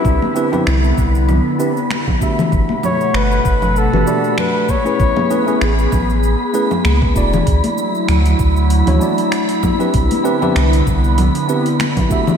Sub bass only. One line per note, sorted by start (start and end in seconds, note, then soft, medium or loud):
0.05 0.19 C2 medium
0.67 0.92 C2 loud
0.98 1.40 C2 loud
2.52 2.66 G1 loud
3.14 3.40 G1 loud
3.45 3.88 G1 medium
3.93 4.04 G1 medium
4.99 5.13 A1 medium
5.61 5.87 A1 medium
5.92 6.35 A1 loud
6.85 7.11 C#2 medium
7.16 7.42 E1 loud
7.47 7.61 D2 medium
8.08 8.34 D2 loud
8.39 8.82 D2 medium
8.87 8.99 D2 medium
9.94 10.08 C2 medium
10.56 10.82 C2 loud
10.87 11.30 C2 medium